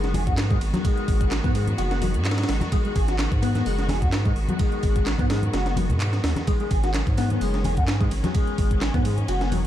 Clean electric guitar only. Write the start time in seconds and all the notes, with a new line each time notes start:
Already playing: G#3
0.14 G#4
0.27 F#4
0.51 G#3
0.74 F#3
0.85 G#3
1.44 B3
1.54 G#3
1.78 F#4
1.91 B3
2.02 F#3
2.73 G#3
2.85 G#3
2.96 G#4
3.08 F#4
3.42 B3
3.55 B3
3.66 G#3
3.90 G#4
4.02 F#4
4.26 G#3
4.50 F#3
4.60 G#3
5.19 B3
5.30 G#3
5.53 F#4
5.66 B3
5.77 F#3
6.48 G#3
6.60 G#3
6.71 G#4
6.84 F#4
7.18 B3
7.31 B3
7.42 G#3
7.65 G#4
7.77 F#4
8.01 G#3
8.24 F#3
8.35 G#3
8.94 B3
9.05 G#3
9.29 F#4
9.41 B3
9.52 F#3